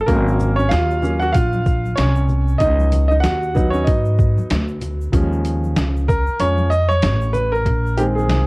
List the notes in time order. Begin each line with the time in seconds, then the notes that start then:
0.01 A4
0.06 G#1 F#3 A#3 C#4 A#4, kick, closed hi-hat, shaker
0.28 shaker
0.39 low conga, shaker
0.56 C#4 C#5, shaker
0.69 D#2 F4 F5, snare, closed hi-hat, shaker
0.91 shaker
1.02 F#3 A#3 C#4, low conga, shaker
1.04 shaker
1.19 F#4 F#5, shaker
1.32 A#1 F4 F5, kick, closed hi-hat, shaker
1.53 high conga, shaker
1.66 kick, shaker
1.85 high conga, shaker
1.96 C2 C#4 C#5, snare, closed hi-hat, shaker
2.15 shaker
2.29 low conga, shaker
2.48 shaker
2.58 C#2 D#4 D#5, kick, closed hi-hat, shaker
2.80 high conga, shaker
2.92 closed hi-hat, high conga, low conga, shaker
3.08 D#4 D#5, high conga, shaker
3.20 D#2 F#4 F#5, snare, shaker
3.25 closed hi-hat
3.43 shaker
3.55 F#3 B3 D#4, kick, low conga, shaker
3.70 C#4 C#5, shaker
3.84 G#2 D#4 D#5, kick, closed hi-hat, shaker
4.05 shaker
4.18 kick, shaker
4.38 muted upright bass stroke, high conga, shaker
4.50 D2, snare, closed hi-hat, shaker
4.68 shaker
4.81 closed hi-hat, low conga, shaker
5.01 shaker
5.12 D#2 F3 G#3 C#4, kick, closed hi-hat, shaker
5.33 shaker
5.45 closed hi-hat, shaker
5.64 high conga, shaker
5.76 C#2, snare, closed hi-hat, shaker
5.97 shaker
6.08 A#4, kick, low conga, shaker
6.27 muted upright bass stroke, shaker
6.40 F2 F3 G#3 C#4 C#5, closed hi-hat, shaker
6.58 high conga, shaker
6.70 D#5, shaker
6.89 C#5, high conga, shaker
7.02 A1, snare, closed hi-hat, shaker
7.21 shaker
7.33 B4, low conga, shaker
7.52 A#4, shaker
7.66 A#1, kick, closed hi-hat, shaker
7.86 shaker
7.97 D#3 G#3 C4 G4, closed hi-hat, shaker
7.99 shaker
8.15 G#4, high conga, shaker
8.29 C2, snare, closed hi-hat, shaker